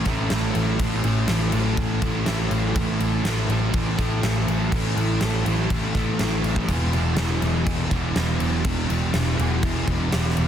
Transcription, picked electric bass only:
0.06 A1
0.31 A1
0.56 A1
0.79 A1
1.04 A1
1.29 A1
1.53 A1
1.77 A1
2.02 A1
2.27 A1
2.51 A1
2.76 A1
2.99 A1
3.24 A1
3.49 A1
3.74 A1
3.99 A1
4.23 A1
4.47 A1
4.72 A1
4.97 A1
5.21 A1
5.46 A1
5.70 A1
5.95 A1
6.20 A1
6.43 A1
6.68 E1
6.92 E1
7.17 E1
7.42 E1
7.67 E1
7.91 E1
8.16 E1
8.40 E1
8.64 E1
8.90 E1
9.14 E1
9.39 E1
9.63 E1
9.88 E1
10.13 E1
10.38 E1

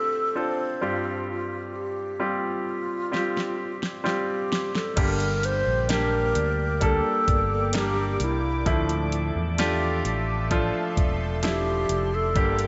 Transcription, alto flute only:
Already playing: A4
0.37 C5
0.83 F4
1.30 F4
1.76 G4
2.23 F4
4.06 G4
4.76 A4
5.00 A#4
5.45 C5
5.92 A#4
6.85 A4
7.77 G4
8.23 E4
11.45 G4
12.15 A4

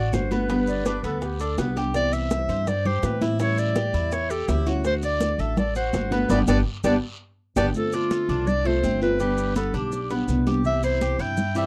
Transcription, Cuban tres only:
Already playing: F#4
0.31 B3
0.50 B3
0.86 D4
1.04 B3
1.41 D4
1.59 B3
1.77 G4
2.13 E5
2.49 C5
2.85 G4
3.22 E4
3.40 E4
3.76 G4
3.94 E4
4.30 G4
4.49 E4
4.67 F#4
5.03 D5
5.39 A4
5.76 F#4
6.12 B3
6.30 B3 D4 G4
6.48 B3 D4 G4
6.84 B3 D4 G4
7.57 B3 D4 G4
7.93 D4
8.11 A4
8.29 D4
8.65 A3
8.84 C4
9.20 G3
9.56 B3
9.74 D4
10.10 B3
10.47 G4
10.83 E4
11.01 G4
11.19 E4
11.56 G3

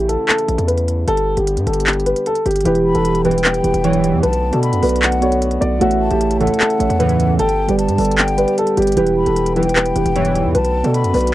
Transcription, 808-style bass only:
Already playing: A1
0.48 A1
0.58 E2
1.08 G1
1.37 G1
1.57 G2
1.67 G1
2.46 G1
2.65 E1
2.95 E1
3.64 E1
3.74 E1
4.13 E2
4.23 B1
4.53 B2
4.73 F#2
4.83 B1
5.61 B1
5.81 A1
6.11 A1
6.80 A1
6.90 E2
7.39 G1
7.69 G1
7.88 G2
7.98 G1
8.77 G1
8.97 E1
9.27 E1
9.96 E1
10.06 E1
10.45 E2
10.55 B1
10.84 B2
11.04 F#2
11.14 B1

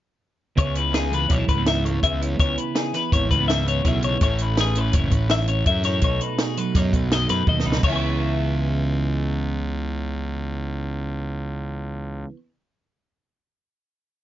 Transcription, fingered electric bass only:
0.58 C#2
1.30 B1
1.48 C#2
2.03 C#2
2.39 C#2
3.12 G#1
3.31 C#2
3.85 B1
4.21 A1
4.93 F#1
5.12 A1
5.66 F#2
6.02 B1
6.75 F#2
6.93 B1
7.30 F#2
7.47 D#2
7.66 C#2
7.83 C#2

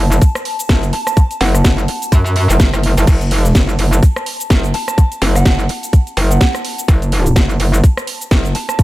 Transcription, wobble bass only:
Already playing: F#1
0.69 F#1
1.41 F#1
1.64 F#1
2.12 F#2
2.50 F#1
2.74 F#1
2.97 F#1
3.07 F#1
3.55 F#1
3.79 F#1
4.50 F#1
5.22 F#1
5.45 F#1
6.17 F#1
6.88 F#1
7.36 F#1
7.60 F#1
8.31 F#1

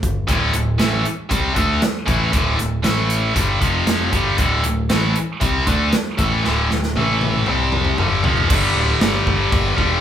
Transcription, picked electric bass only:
0.03 G1
0.29 D1
0.53 D1
0.79 A1
1.06 muted picked electric bass stroke
1.31 C2
1.57 D2
2.07 A1
2.33 D1
2.59 D1
2.84 A1
3.36 G1
3.62 F1
4.12 G1
4.38 D1
4.64 D1
4.91 A1
5.17 muted picked electric bass stroke
5.42 C2
5.67 D2
6.19 A1
6.45 D1
6.71 D1
6.96 A1
7.48 C2
7.98 G1
8.24 F1
8.50 G1
8.75 D1
9.00 G1
9.27 G1
9.52 G1
9.78 E1

